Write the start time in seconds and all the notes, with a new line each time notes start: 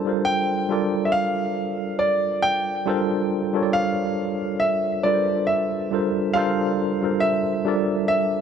Already playing: G3 D4 F4 A4 A#4 C5 A5
0.05 G3 D4 F4 A4 A#4 C5
0.25 G5
0.69 G3 D4 F4 A4 A#4 D5
1.05 E5
1.12 F5
1.99 D5
2.42 G5
2.86 G3 D4 F4 A4 A#4 C5
3.53 G3 D4 F4 A4 A#4 C#5
3.63 D5
3.73 F5
4.60 E5
5.03 G3 D4 F4 A4 A#4 B4 D5
5.14 C5
5.47 E5
5.91 G3 D4 F4 A4 A#4 C5
6.34 G3 D4 F4 A4 A#4 F5
6.38 C5
7.01 G3 D4 F4 A4 A#4 C5
7.20 E5
7.65 G3 D4 F4 A4 A#4 D5
8.08 E5